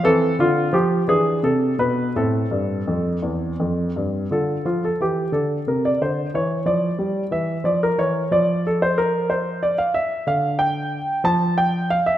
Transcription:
<<
  \new Staff \with { instrumentName = "Grand piano" } { \time 6/8 \key a \minor \tempo 4. = 60 << { a'8 f'8 g'8 gis'8 a'8 b'8 | a'4. r4. | \key d \minor a'8 f'16 a'16 g'8 a'8 bes'16 d''16 c''8 | cis''8 d''4 e''8 d''16 bes'16 cis''8 |
d''8 a'16 c''16 bes'8 c''8 d''16 f''16 e''8 | f''8 g''4 a''8 g''8 f''16 e''16 | } \\ { c'4. d'4. | c'2. | f'2. | e'2. |
f'2. | d'2. | } >> }
  \new Staff \with { instrumentName = "Grand piano" } { \clef bass \time 6/8 \key a \minor e8 d8 f8 e8 c8 b,8 | a,8 g,8 f,8 e,8 f,8 g,8 | \key d \minor d8 f8 e8 d8 c8 d8 | e8 f8 g8 e8 f8 e8 |
f2. | d4. f4. | }
>>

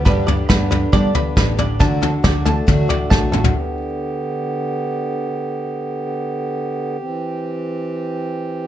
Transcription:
<<
  \new Staff \with { instrumentName = "Five-string banjo" } { \time 4/4 \key g \major \tempo 4 = 138 b'8 d''8 b''8 b'8 d''8 b''8 b'8 d''8 | a''8 a'8 d''8 a''4 d''8 a''8 a'8 | r1 | r1 |
r1 | }
  \new Staff \with { instrumentName = "Steel-string acoustic guitar" } { \time 4/4 \key g \major << { <d b d' g'>8 d'8 b4 d'4 g'8 d'8 | r8 fis'8 d'4 fis'4 fis'8 fis'8 | r1 | r1 |
r1 | } \\ { g,4. d4 g,4. | d4. a4 a,4. | r1 | r1 |
r1 | } >> }
  \new Staff \with { instrumentName = "Harmonium" } { \time 4/4 \key g \major r1 | r1 | g'1~ | g'1~ |
g'1 | }
  \new Staff \with { instrumentName = "Harmonium" } { \clef bass \time 4/4 \key g \major r1 | r1 | <d b>1~ | <d b>1 |
<e c'>1 | }
  \new Staff \with { instrumentName = "Twelve-string acoustic guitar" } { \time 4/4 \key g \major <g, d g b d' g'>8 <g b d' g'>8 <g b d' g'>8 <g b d' g'>8 <g, d g b d' g'>8 <g b d' g'>8 <g b d' g'>8 <g b d' g'>8 | <d fis a d' fis'>8 <a d' fis'>8 <fis a d' fis'>8 <a d' fis'>8 <d fis a d' fis'>8 <a d' fis'>8 <fis a d' fis'>8 <a d' fis'>8 | r1 | r1 |
r1 | }
  \new Staff \with { instrumentName = "Fingered electric bass" } { \clef bass \time 4/4 \key g \major g,4 g,4 g8 r8 a,,4 | d,4 d,4 d8 r8 b,,8 a,,8 | r1 | r1 |
r1 | }
  \new DrumStaff \with { instrumentName = "Drums" } \drummode { \time 4/4 <bd tomfh>8 tomfh8 <bd sn tomfh>8 tomfh8 <bd tomfh>8 tomfh8 <bd sn tomfh>8 tomfh8 | <bd tomfh>8 tomfh8 <bd sn tomfh>8 tomfh8 <bd tomfh>8 tomfh8 <bd sn>8 toml16 tomfh16 | r4 r4 r4 r4 | r4 r4 r4 r4 |
r4 r4 r4 r4 | }
>>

